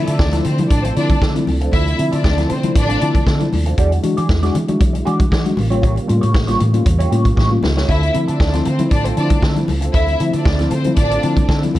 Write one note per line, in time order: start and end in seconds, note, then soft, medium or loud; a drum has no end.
0.00 3.74 C3 medium
0.00 3.74 F3 medium
0.00 3.74 A3 medium
0.00 3.75 D4 medium
0.06 0.17 D3 medium
0.06 0.12 C4 soft
0.06 0.18 C4 medium
0.06 0.42 D4 medium
0.06 0.12 E4 soft
0.06 0.19 F4 medium
0.06 0.19 A4 medium
0.06 0.42 D5 medium
0.06 closed hi-hat medium
0.19 0.38 D2 loud
0.19 kick loud
0.19 snare loud
0.32 0.45 F3 medium
0.32 0.45 C4 medium
0.32 0.43 C4 medium
0.32 0.45 E4 medium
0.32 0.44 F4 medium
0.32 0.44 A4 medium
0.32 snare soft
0.32 closed hi-hat medium
0.32 muted conga soft
0.44 0.64 D3 loud
0.44 0.59 D3 medium
0.44 0.65 C4 loud
0.44 0.65 C5 loud
0.44 muted clean electric guitar stroke medium
0.44 closed hi-hat medium
0.44 low conga medium
0.58 0.71 F3 medium
0.58 0.71 C4 medium
0.58 0.71 E4 medium
0.58 muted clean electric guitar stroke medium
0.58 closed hi-hat medium
0.58 high conga medium
0.69 0.90 A1 medium
0.69 0.85 D3 medium
0.69 0.81 D4 medium
0.69 0.81 D5 loud
0.69 muted clean electric guitar stroke soft
0.69 kick loud
0.69 closed hi-hat loud
0.83 0.93 C4 medium
0.83 0.95 C4 medium
0.83 0.96 F4 medium
0.83 0.96 A4 medium
0.83 0.93 C5 loud
0.83 closed hi-hat medium
0.83 muted conga soft
0.96 1.16 D3 loud
0.96 1.10 F3 medium
0.96 1.10 C4 medium
0.96 1.09 C4 medium
0.96 1.17 D4 loud
0.96 1.09 E4 loud
0.96 1.09 F4 medium
0.96 1.09 A4 medium
0.96 1.17 D5 loud
0.96 closed hi-hat medium
1.09 muted clean electric guitar stroke medium
1.09 kick loud
1.09 closed hi-hat medium
1.09 high conga medium
1.21 1.41 D3 loud
1.21 1.36 D3 medium
1.21 1.39 C4 medium
1.21 1.35 F4 loud
1.21 1.35 A4 medium
1.21 kick loud
1.21 snare loud
1.35 1.47 F3 medium
1.35 1.47 C4 medium
1.35 1.47 E4 medium
1.35 muted clean electric guitar stroke medium
1.35 closed hi-hat medium
1.35 high conga medium
1.47 1.67 C#2 medium
1.47 1.53 C4 soft
1.47 1.53 E4 soft
1.47 muted clean electric guitar stroke soft
1.47 open hi-hat medium
1.47 high conga medium
1.47 low conga medium
1.61 1.71 C4 medium
1.61 1.72 F4 medium
1.61 1.72 A4 medium
1.61 closed hi-hat medium
1.72 1.92 D2 medium
1.72 1.87 D3 medium
1.72 1.90 C4 medium
1.72 1.94 E4 loud
1.72 1.86 F4 medium
1.72 1.85 A4 loud
1.72 1.93 E5 loud
1.72 kick loud
1.72 closed hi-hat medium
1.72 muted conga soft
1.86 muted clean electric guitar stroke soft
1.86 closed hi-hat soft
1.86 muted conga soft
1.99 2.09 D3 medium
1.99 2.12 F3 medium
1.99 2.12 C4 medium
1.99 2.12 E4 loud
1.99 muted clean electric guitar stroke soft
1.99 closed hi-hat medium
2.12 2.22 D3 loud
2.12 2.23 C4 medium
2.12 2.17 C4 soft
2.12 2.48 D4 medium
2.12 2.17 E4 soft
2.12 2.23 F4 medium
2.12 2.23 A4 medium
2.12 2.48 D5 loud
2.12 closed hi-hat medium
2.24 2.43 D2 loud
2.24 muted clean electric guitar stroke soft
2.24 kick loud
2.24 snare loud
2.24 muted conga soft
2.37 2.50 F3 medium
2.37 2.50 C4 medium
2.37 2.48 C4 medium
2.37 2.50 E4 medium
2.37 2.48 F4 medium
2.37 2.49 A4 medium
2.37 snare soft
2.37 closed hi-hat medium
2.37 muted conga soft
2.49 2.64 D3 medium
2.49 2.70 D3 loud
2.49 2.71 C4 loud
2.49 2.71 C5 loud
2.49 muted clean electric guitar stroke soft
2.49 closed hi-hat medium
2.49 low conga medium
2.63 2.76 F3 medium
2.63 2.76 C4 medium
2.63 2.76 E4 medium
2.63 muted clean electric guitar stroke medium
2.63 closed hi-hat medium
2.63 high conga medium
2.75 2.95 A1 loud
2.75 2.89 D3 medium
2.75 3.24 D4 loud
2.75 3.24 D5 loud
2.75 muted clean electric guitar stroke soft
2.75 kick loud
2.75 closed hi-hat loud
2.75 muted conga soft
2.88 2.99 C4 medium
2.88 3.00 F4 medium
2.88 3.00 A4 medium
2.88 closed hi-hat medium
2.88 muted conga soft
3.00 3.21 D3 loud
3.00 3.15 F3 medium
3.00 3.15 C4 medium
3.00 3.13 C4 medium
3.00 3.13 E4 loud
3.00 3.14 F4 medium
3.00 3.13 A4 medium
3.00 closed hi-hat medium
3.14 3.19 C4 soft
3.14 3.19 E4 soft
3.14 muted clean electric guitar stroke soft
3.14 kick loud
3.14 closed hi-hat medium
3.14 high conga medium
3.26 3.40 D3 medium
3.26 3.46 D3 loud
3.26 3.44 C4 medium
3.26 3.39 F4 medium
3.26 3.39 A4 medium
3.26 kick loud
3.26 snare loud
3.40 3.52 F3 medium
3.40 3.51 C4 medium
3.40 3.51 E4 medium
3.40 muted clean electric guitar stroke medium
3.40 closed hi-hat soft
3.40 high conga medium
3.52 3.72 D#2 medium
3.52 3.58 C4 soft
3.52 3.58 E4 soft
3.52 muted clean electric guitar stroke soft
3.52 open hi-hat medium
3.52 high conga medium
3.52 low conga medium
3.66 3.79 C4 medium
3.66 3.78 F4 medium
3.66 3.78 A4 medium
3.66 closed hi-hat medium
3.77 3.97 E2 loud
3.77 5.56 D3 medium
3.77 3.92 E3 medium
3.77 5.55 F#3 medium
3.77 5.55 G#3 medium
3.77 5.55 E4 medium
3.77 3.95 F#4 medium
3.77 3.91 G#4 loud
3.77 3.91 D5 loud
3.77 kick loud
3.77 closed hi-hat medium
3.92 muted clean electric guitar stroke soft
3.92 closed hi-hat soft
4.03 4.14 E3 medium
4.03 4.17 G#3 loud
4.03 4.16 D4 medium
4.03 4.16 F#4 loud
4.03 muted clean electric guitar stroke soft
4.03 closed hi-hat medium
4.17 4.27 E3 loud
4.17 4.22 D4 soft
4.17 4.22 F#4 medium
4.17 4.28 F#4 medium
4.17 4.29 G#4 medium
4.17 4.29 D5 medium
4.17 closed hi-hat medium
4.29 4.49 E2 loud
4.29 muted clean electric guitar stroke soft
4.29 kick loud
4.29 snare loud
4.29 muted conga soft
4.43 4.55 G#3 medium
4.43 4.55 D4 medium
4.43 4.55 F#4 medium
4.43 4.54 F#4 medium
4.43 4.54 G#4 medium
4.43 4.54 D5 medium
4.43 snare soft
4.43 closed hi-hat medium
4.43 muted conga soft
4.55 4.69 E3 medium
4.55 4.75 E3 loud
4.55 muted clean electric guitar stroke medium
4.55 closed hi-hat medium
4.55 low conga medium
4.68 4.81 G#3 medium
4.68 4.81 D4 medium
4.68 4.81 F#4 medium
4.68 muted clean electric guitar stroke soft
4.68 closed hi-hat medium
4.68 high conga loud
4.80 5.00 B1 loud
4.80 4.94 E3 medium
4.80 muted clean electric guitar stroke medium
4.80 kick loud
4.80 closed hi-hat loud
4.80 muted conga soft
4.93 muted clean electric guitar stroke soft
4.93 closed hi-hat medium
4.93 muted conga soft
5.05 5.26 E3 loud
5.05 5.20 G#3 medium
5.05 5.19 D4 medium
5.05 5.23 F#4 loud
5.05 5.19 F#4 medium
5.05 5.19 G#4 medium
5.05 5.18 D5 loud
5.05 closed hi-hat medium
5.19 5.25 D4 soft
5.19 5.25 F#4 soft
5.19 muted clean electric guitar stroke soft
5.19 kick loud
5.19 closed hi-hat medium
5.19 high conga medium
5.31 5.51 E3 loud
5.31 5.49 F#4 medium
5.31 5.45 G#4 medium
5.31 5.44 D5 medium
5.31 kick loud
5.31 snare loud
5.31 muted conga soft
5.45 5.58 G#3 medium
5.45 5.58 D4 medium
5.45 5.58 F#4 medium
5.45 muted clean electric guitar stroke medium
5.45 closed hi-hat soft
5.45 high conga medium
5.56 5.97 A1 medium
5.56 5.71 A2 medium
5.56 7.86 C#3 medium
5.56 5.71 E3 medium
5.56 7.86 G3 medium
5.56 7.86 A#3 medium
5.56 11.79 F4 medium
5.56 muted clean electric guitar stroke soft
5.56 open hi-hat medium
5.56 high conga medium
5.56 low conga medium
5.70 5.83 G3 medium
5.70 5.83 A#3 medium
5.70 5.83 C#4 medium
5.70 5.83 F4 medium
5.70 5.81 F4 soft
5.70 5.81 G4 medium
5.70 5.82 C#5 medium
5.70 closed hi-hat medium
5.82 5.97 A2 medium
5.82 5.97 E3 medium
5.82 6.00 F4 medium
5.82 5.96 G4 medium
5.82 5.95 C#5 medium
5.82 kick loud
5.82 closed hi-hat medium
5.82 muted conga soft
5.96 muted clean electric guitar stroke soft
5.96 closed hi-hat soft
5.96 muted conga soft
6.08 6.20 A2 loud
6.08 6.22 G3 loud
6.08 6.22 A#3 medium
6.08 6.21 C#4 medium
6.08 6.21 F4 loud
6.08 muted clean electric guitar stroke soft
6.08 closed hi-hat medium
6.21 6.32 A2 medium
6.21 6.27 C#4 soft
6.21 6.27 F4 soft
6.21 6.32 F4 medium
6.21 6.33 G4 medium
6.21 6.33 C#5 medium
6.21 closed hi-hat medium
6.34 6.54 A1 loud
6.34 muted clean electric guitar stroke soft
6.34 kick loud
6.34 snare loud
6.34 muted conga soft
6.47 6.61 G3 medium
6.47 6.61 A#3 medium
6.47 6.61 C#4 medium
6.47 6.58 F4 medium
6.47 6.61 F4 medium
6.47 6.58 G4 medium
6.47 6.59 C#5 medium
6.47 snare soft
6.47 closed hi-hat medium
6.59 6.74 A2 medium
6.59 6.80 A2 loud
6.59 6.74 E3 medium
6.59 muted clean electric guitar stroke medium
6.59 closed hi-hat medium
6.59 low conga medium
6.73 6.86 G3 medium
6.73 6.86 A#3 medium
6.73 6.86 C#4 medium
6.73 6.86 F4 medium
6.73 muted clean electric guitar stroke soft
6.73 closed hi-hat medium
6.73 high conga medium
6.85 7.05 E2 loud
6.85 7.00 A2 medium
6.85 7.00 E3 medium
6.85 muted clean electric guitar stroke soft
6.85 kick loud
6.85 closed hi-hat loud
6.99 7.09 F4 medium
6.99 7.10 G4 medium
6.99 7.10 C#5 medium
6.99 closed hi-hat medium
6.99 muted conga soft
7.10 7.31 A2 loud
7.10 7.25 G3 medium
7.10 7.25 A#3 medium
7.10 7.25 C#4 medium
7.10 7.25 F4 medium
7.10 7.24 G4 medium
7.10 7.23 C#5 medium
7.10 closed hi-hat medium
7.24 7.30 C#4 soft
7.24 7.30 F4 soft
7.24 muted clean electric guitar stroke soft
7.24 kick loud
7.24 closed hi-hat medium
7.24 high conga medium
7.36 7.57 A2 loud
7.36 7.52 A2 medium
7.36 7.51 E3 medium
7.36 7.54 F4 medium
7.36 7.50 G4 medium
7.36 7.50 C#5 loud
7.36 kick loud
7.36 snare medium
7.51 7.63 G3 medium
7.51 7.64 A#3 medium
7.51 7.63 C#4 medium
7.51 7.63 F4 medium
7.51 muted clean electric guitar stroke soft
7.51 muted conga soft
7.51 high conga medium
7.63 7.82 C#2 medium
7.63 7.69 C#4 soft
7.63 7.69 F4 soft
7.63 muted clean electric guitar stroke soft
7.63 snare loud
7.63 high conga medium
7.63 low conga medium
7.77 7.88 F4 medium
7.77 7.89 G4 medium
7.77 7.89 C#5 medium
7.77 snare loud
7.88 8.08 D2 medium
7.88 11.79 D3 medium
7.88 8.03 D3 medium
7.88 11.79 A3 medium
7.88 11.79 C4 medium
7.88 8.06 C4 medium
7.88 8.09 E4 loud
7.88 8.02 F4 medium
7.88 8.01 A4 medium
7.88 8.09 E5 loud
7.88 kick loud
7.88 closed hi-hat medium
8.02 muted clean electric guitar stroke soft
8.02 closed hi-hat soft
8.14 8.25 D3 loud
8.14 8.28 F3 loud
8.14 8.28 C4 medium
8.14 8.28 E4 loud
8.14 muted clean electric guitar stroke soft
8.14 closed hi-hat medium
8.28 8.38 D3 medium
8.28 8.39 C4 medium
8.28 8.33 C4 soft
8.28 8.63 D4 medium
8.28 8.33 E4 medium
8.28 8.39 F4 medium
8.28 8.39 A4 medium
8.28 8.64 D5 medium
8.28 closed hi-hat medium
8.40 8.59 D2 loud
8.40 muted clean electric guitar stroke soft
8.40 kick loud
8.40 snare loud
8.53 8.66 F3 medium
8.53 8.65 C4 medium
8.53 8.66 C4 medium
8.53 8.66 E4 medium
8.53 8.65 F4 medium
8.53 8.65 A4 medium
8.53 snare soft
8.53 closed hi-hat medium
8.53 muted conga soft
8.65 8.80 D3 medium
8.65 8.85 D3 loud
8.65 8.86 C4 loud
8.65 8.86 C5 loud
8.65 muted clean electric guitar stroke medium
8.65 closed hi-hat medium
8.65 low conga medium
8.79 8.91 F3 medium
8.79 8.92 C4 medium
8.79 8.92 E4 loud
8.79 muted clean electric guitar stroke medium
8.79 closed hi-hat medium
8.79 high conga medium
8.91 9.11 A1 medium
8.91 9.05 D3 medium
8.91 9.02 D4 loud
8.91 9.02 D5 loud
8.91 muted clean electric guitar stroke soft
8.91 kick loud
8.91 closed hi-hat loud
9.04 9.15 C4 medium
9.04 9.15 F4 medium
9.04 9.16 A4 medium
9.04 9.15 C5 loud
9.04 closed hi-hat medium
9.04 muted conga soft
9.16 9.37 D3 loud
9.16 9.31 F3 medium
9.16 9.31 C4 medium
9.16 9.30 C4 medium
9.16 9.37 D4 loud
9.16 9.30 E4 loud
9.16 9.30 F4 medium
9.16 9.29 A4 medium
9.16 9.37 D5 loud
9.16 closed hi-hat medium
9.30 9.36 C4 soft
9.30 9.36 E4 soft
9.30 muted clean electric guitar stroke soft
9.30 kick loud
9.30 closed hi-hat medium
9.30 high conga medium
9.42 9.62 D3 medium
9.42 9.57 D3 medium
9.42 9.60 C4 medium
9.42 9.55 F4 loud
9.42 9.55 A4 loud
9.42 kick loud
9.42 snare loud
9.42 muted conga soft
9.56 9.69 F3 medium
9.56 9.68 C4 medium
9.56 9.68 E4 medium
9.56 muted clean electric guitar stroke soft
9.56 closed hi-hat medium
9.56 high conga medium
9.68 9.88 C#2 medium
9.68 9.74 C4 soft
9.68 9.74 E4 soft
9.68 muted clean electric guitar stroke soft
9.68 open hi-hat medium
9.68 high conga medium
9.68 low conga medium
9.81 9.92 C4 medium
9.81 9.93 F4 medium
9.81 9.93 A4 medium
9.81 closed hi-hat medium
9.93 10.14 D2 medium
9.93 10.08 D3 medium
9.93 10.11 C4 medium
9.93 10.14 E4 loud
9.93 10.07 F4 medium
9.93 10.06 A4 medium
9.93 10.14 E5 loud
9.93 kick loud
9.93 closed hi-hat medium
10.07 muted clean electric guitar stroke soft
10.07 closed hi-hat soft
10.07 muted conga soft
10.19 10.30 D3 loud
10.19 10.34 F3 loud
10.19 10.33 C4 medium
10.19 10.33 E4 loud
10.19 muted clean electric guitar stroke soft
10.19 closed hi-hat medium
10.33 10.43 D3 medium
10.33 10.39 C4 soft
10.33 10.44 C4 medium
10.33 10.69 D4 medium
10.33 10.39 E4 medium
10.33 10.45 F4 medium
10.33 10.45 A4 medium
10.33 10.69 D5 loud
10.33 closed hi-hat medium
10.45 10.65 D2 loud
10.45 muted clean electric guitar stroke soft
10.45 kick loud
10.45 snare loud
10.59 10.72 F3 medium
10.59 10.70 C4 medium
10.59 10.72 C4 medium
10.59 10.72 E4 medium
10.59 10.70 F4 medium
10.59 10.71 A4 medium
10.59 snare soft
10.59 closed hi-hat soft
10.71 10.91 D3 loud
10.71 10.85 D3 medium
10.71 10.92 C4 medium
10.71 10.92 C5 loud
10.71 muted clean electric guitar stroke medium
10.71 closed hi-hat medium
10.71 low conga medium
10.84 10.97 F3 medium
10.84 10.98 C4 medium
10.84 10.98 E4 loud
10.84 muted clean electric guitar stroke medium
10.84 closed hi-hat soft
10.84 high conga medium
10.96 11.16 A1 loud
10.96 11.11 D3 medium
10.96 11.45 D4 loud
10.96 11.45 D5 loud
10.96 muted clean electric guitar stroke soft
10.96 kick loud
10.96 closed hi-hat loud
11.10 11.21 C4 medium
11.10 11.21 F4 medium
11.10 11.22 A4 medium
11.10 closed hi-hat medium
11.22 11.43 D3 loud
11.22 11.37 F3 medium
11.22 11.36 C4 medium
11.22 11.36 E4 medium
11.22 11.36 F4 medium
11.22 11.36 A4 medium
11.22 closed hi-hat medium
11.36 11.42 C4 soft
11.36 11.42 E4 soft
11.36 muted clean electric guitar stroke soft
11.36 kick loud
11.36 closed hi-hat medium
11.36 high conga medium
11.48 11.68 D3 loud
11.48 11.63 D3 medium
11.48 11.66 C4 loud
11.48 11.62 F4 medium
11.48 11.61 A4 loud
11.48 kick loud
11.48 snare loud
11.48 muted conga soft
11.62 11.74 F3 medium
11.62 11.74 C4 medium
11.62 11.74 E4 medium
11.62 muted clean electric guitar stroke soft
11.62 closed hi-hat soft
11.62 high conga medium
11.75 11.79 D#2 medium
11.75 11.79 C4 soft
11.75 11.79 E4 soft
11.75 muted clean electric guitar stroke soft
11.75 open hi-hat medium
11.75 high conga medium
11.75 low conga medium